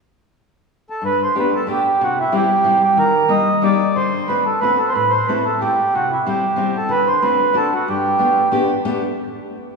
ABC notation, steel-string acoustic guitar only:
X:1
M:3/4
L:1/8
Q:"Swing" 1/4=184
K:G
V:1 name="Steel-string acoustic guitar"
z6 | G,,2 [A,B,DG] z [A,B,DG] z | C,2 [G,CEG] z [G,CEG] z | _E,2 [G,_B,_EG] z [G,B,EG] z |
D,2 [A,CDF] z [A,CDF] z | A,,2 [A,CEA] z [A,CEA] z | C,2 [G,CEG] z [G,CEG] z | D,2 [A,CDF] z [A,CDF] z |
G,,2 [A,B,DG] z [A,B,DG] z | [A,B,DG] z4 z |]